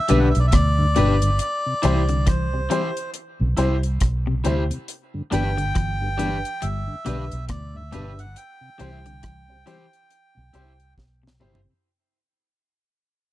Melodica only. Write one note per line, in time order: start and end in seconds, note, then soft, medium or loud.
0.00 0.20 E5 loud
0.19 0.29 F#5 medium
0.30 0.39 E5 medium
0.40 0.46 D5 medium
0.47 0.54 E5 medium
0.54 1.40 D5 loud
1.41 2.30 D5 medium
2.28 3.10 C5 medium
5.33 6.67 G5 loud
6.62 7.45 E5 loud
7.50 7.76 D5 medium
7.76 8.20 E5 medium
8.19 8.37 F#5 medium
8.37 10.94 G5 loud